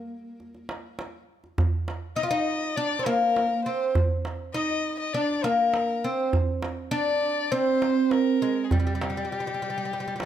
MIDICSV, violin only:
0, 0, Header, 1, 2, 480
1, 0, Start_track
1, 0, Tempo, 594648
1, 1272, Time_signature, 4, 2, 24, 8
1, 8275, End_track
2, 0, Start_track
2, 0, Title_t, "Violin"
2, 0, Program_c, 0, 40
2, 1747, Note_on_c, 0, 75, 70
2, 1843, Note_off_c, 0, 75, 0
2, 1848, Note_on_c, 0, 75, 76
2, 2232, Note_on_c, 0, 74, 80
2, 2244, Note_off_c, 0, 75, 0
2, 2470, Note_on_c, 0, 70, 67
2, 2482, Note_off_c, 0, 74, 0
2, 2941, Note_off_c, 0, 70, 0
2, 2946, Note_on_c, 0, 72, 56
2, 3172, Note_off_c, 0, 72, 0
2, 3668, Note_on_c, 0, 75, 77
2, 4004, Note_off_c, 0, 75, 0
2, 4031, Note_on_c, 0, 75, 72
2, 4143, Note_on_c, 0, 74, 76
2, 4155, Note_off_c, 0, 75, 0
2, 4394, Note_on_c, 0, 70, 66
2, 4407, Note_off_c, 0, 74, 0
2, 4879, Note_on_c, 0, 72, 54
2, 4891, Note_off_c, 0, 70, 0
2, 5116, Note_off_c, 0, 72, 0
2, 5601, Note_on_c, 0, 74, 76
2, 6067, Note_on_c, 0, 72, 87
2, 6079, Note_off_c, 0, 74, 0
2, 6555, Note_on_c, 0, 70, 73
2, 6568, Note_off_c, 0, 72, 0
2, 6978, Note_on_c, 0, 68, 46
2, 6991, Note_off_c, 0, 70, 0
2, 7031, Note_on_c, 0, 67, 66
2, 7044, Note_off_c, 0, 68, 0
2, 8275, Note_off_c, 0, 67, 0
2, 8275, End_track
0, 0, End_of_file